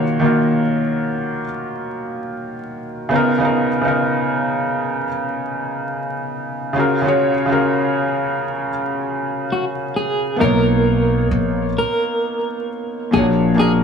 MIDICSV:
0, 0, Header, 1, 4, 480
1, 0, Start_track
1, 0, Key_signature, 6, "major"
1, 0, Tempo, 909091
1, 1648, Time_signature, 4, 2, 24, 8
1, 7305, End_track
2, 0, Start_track
2, 0, Title_t, "Clean electric guitar"
2, 0, Program_c, 0, 27
2, 5028, Note_on_c, 0, 66, 75
2, 5090, Note_off_c, 0, 66, 0
2, 5261, Note_on_c, 0, 68, 81
2, 5494, Note_off_c, 0, 68, 0
2, 5497, Note_on_c, 0, 70, 107
2, 5951, Note_off_c, 0, 70, 0
2, 6222, Note_on_c, 0, 70, 93
2, 6933, Note_off_c, 0, 70, 0
2, 6935, Note_on_c, 0, 68, 96
2, 6999, Note_off_c, 0, 68, 0
2, 7178, Note_on_c, 0, 68, 100
2, 7241, Note_off_c, 0, 68, 0
2, 7305, End_track
3, 0, Start_track
3, 0, Title_t, "Felt piano"
3, 0, Program_c, 1, 0
3, 0, Control_c, 1, 64, 127
3, 0, Note_on_c, 1, 51, 79
3, 0, Note_on_c, 1, 58, 71
3, 0, Note_on_c, 1, 65, 69
3, 0, Note_on_c, 1, 66, 76
3, 0, Note_on_c, 1, 73, 77
3, 103, Note_off_c, 1, 51, 0
3, 103, Note_on_c, 1, 51, 91
3, 110, Note_off_c, 1, 58, 0
3, 110, Note_on_c, 1, 58, 71
3, 117, Note_off_c, 1, 65, 0
3, 117, Note_on_c, 1, 65, 66
3, 127, Note_off_c, 1, 66, 0
3, 127, Note_on_c, 1, 66, 66
3, 136, Note_on_c, 1, 70, 73
3, 744, Note_off_c, 1, 51, 0
3, 748, Note_off_c, 1, 58, 0
3, 751, Note_off_c, 1, 65, 0
3, 757, Note_off_c, 1, 66, 0
3, 761, Note_off_c, 1, 70, 0
3, 1631, Note_on_c, 1, 49, 91
3, 1641, Note_on_c, 1, 59, 85
3, 1648, Note_on_c, 1, 63, 77
3, 1656, Control_c, 1, 64, 0
3, 1657, Note_on_c, 1, 65, 79
3, 1661, Note_off_c, 1, 73, 0
3, 1666, Note_on_c, 1, 70, 98
3, 1738, Note_off_c, 1, 49, 0
3, 1743, Note_off_c, 1, 59, 0
3, 1746, Note_off_c, 1, 63, 0
3, 1751, Note_off_c, 1, 65, 0
3, 1752, Control_c, 1, 64, 127
3, 1755, Note_off_c, 1, 70, 0
3, 1785, Note_on_c, 1, 49, 80
3, 1794, Note_on_c, 1, 59, 82
3, 1801, Note_on_c, 1, 63, 74
3, 1810, Note_on_c, 1, 65, 65
3, 1820, Note_on_c, 1, 70, 83
3, 1936, Note_off_c, 1, 49, 0
3, 1940, Note_off_c, 1, 59, 0
3, 1944, Note_off_c, 1, 63, 0
3, 1948, Note_off_c, 1, 65, 0
3, 1953, Note_off_c, 1, 70, 0
3, 2013, Note_on_c, 1, 49, 77
3, 2024, Note_on_c, 1, 59, 61
3, 2031, Note_on_c, 1, 63, 76
3, 2040, Note_on_c, 1, 65, 69
3, 2048, Note_on_c, 1, 70, 83
3, 2660, Note_off_c, 1, 49, 0
3, 2665, Note_off_c, 1, 59, 0
3, 2668, Note_off_c, 1, 63, 0
3, 2673, Note_off_c, 1, 65, 0
3, 2677, Note_off_c, 1, 70, 0
3, 3553, Note_on_c, 1, 49, 80
3, 3560, Note_on_c, 1, 61, 74
3, 3567, Note_on_c, 1, 65, 83
3, 3575, Control_c, 1, 64, 0
3, 3576, Note_on_c, 1, 66, 78
3, 3580, Note_on_c, 1, 68, 69
3, 3588, Note_on_c, 1, 70, 89
3, 3659, Note_off_c, 1, 49, 0
3, 3659, Control_c, 1, 64, 127
3, 3662, Note_off_c, 1, 61, 0
3, 3666, Note_off_c, 1, 65, 0
3, 3670, Note_off_c, 1, 66, 0
3, 3672, Note_off_c, 1, 68, 0
3, 3676, Note_off_c, 1, 70, 0
3, 3704, Note_on_c, 1, 49, 88
3, 3711, Note_on_c, 1, 61, 70
3, 3718, Note_on_c, 1, 65, 75
3, 3725, Note_on_c, 1, 66, 78
3, 3733, Note_on_c, 1, 68, 82
3, 3739, Note_on_c, 1, 73, 95
3, 3855, Note_off_c, 1, 49, 0
3, 3859, Note_off_c, 1, 61, 0
3, 3862, Note_off_c, 1, 65, 0
3, 3866, Note_off_c, 1, 66, 0
3, 3870, Note_off_c, 1, 68, 0
3, 3873, Note_off_c, 1, 73, 0
3, 3937, Note_on_c, 1, 49, 84
3, 3944, Note_on_c, 1, 61, 70
3, 3951, Note_on_c, 1, 65, 75
3, 3957, Note_on_c, 1, 66, 75
3, 3965, Note_on_c, 1, 68, 69
3, 3972, Note_on_c, 1, 70, 84
3, 4581, Note_off_c, 1, 49, 0
3, 4585, Note_off_c, 1, 61, 0
3, 4589, Note_off_c, 1, 65, 0
3, 4591, Note_off_c, 1, 66, 0
3, 4596, Note_off_c, 1, 68, 0
3, 4599, Note_off_c, 1, 70, 0
3, 5472, Note_on_c, 1, 59, 75
3, 5482, Note_on_c, 1, 58, 71
3, 5488, Note_on_c, 1, 63, 73
3, 5494, Control_c, 1, 64, 0
3, 5499, Note_on_c, 1, 65, 80
3, 5507, Note_on_c, 1, 73, 94
3, 5574, Control_c, 1, 64, 127
3, 6145, Note_off_c, 1, 59, 0
3, 6150, Note_off_c, 1, 58, 0
3, 6153, Note_off_c, 1, 63, 0
3, 6159, Note_off_c, 1, 65, 0
3, 6163, Note_off_c, 1, 73, 0
3, 6922, Note_on_c, 1, 46, 75
3, 6929, Note_on_c, 1, 58, 70
3, 6935, Control_c, 1, 64, 0
3, 6937, Note_on_c, 1, 62, 64
3, 6941, Note_on_c, 1, 66, 78
3, 6950, Note_on_c, 1, 68, 68
3, 6957, Note_on_c, 1, 73, 81
3, 7013, Control_c, 1, 64, 127
3, 7127, Note_off_c, 1, 46, 0
3, 7131, Note_off_c, 1, 58, 0
3, 7134, Note_off_c, 1, 62, 0
3, 7137, Note_off_c, 1, 66, 0
3, 7141, Note_off_c, 1, 68, 0
3, 7144, Note_off_c, 1, 73, 0
3, 7152, Note_on_c, 1, 46, 64
3, 7157, Note_on_c, 1, 58, 72
3, 7165, Note_on_c, 1, 62, 63
3, 7171, Note_on_c, 1, 66, 60
3, 7179, Note_on_c, 1, 68, 61
3, 7185, Note_on_c, 1, 70, 79
3, 7305, Note_off_c, 1, 46, 0
3, 7305, Note_off_c, 1, 58, 0
3, 7305, Note_off_c, 1, 62, 0
3, 7305, Note_off_c, 1, 66, 0
3, 7305, Note_off_c, 1, 68, 0
3, 7305, Note_off_c, 1, 70, 0
3, 7305, End_track
4, 0, Start_track
4, 0, Title_t, "Upright bass"
4, 0, Program_c, 2, 32
4, 5498, Note_on_c, 2, 35, 107
4, 5952, Note_off_c, 2, 35, 0
4, 5973, Note_on_c, 2, 34, 98
4, 6198, Note_off_c, 2, 34, 0
4, 6934, Note_on_c, 2, 34, 108
4, 7296, Note_off_c, 2, 34, 0
4, 7305, End_track
0, 0, End_of_file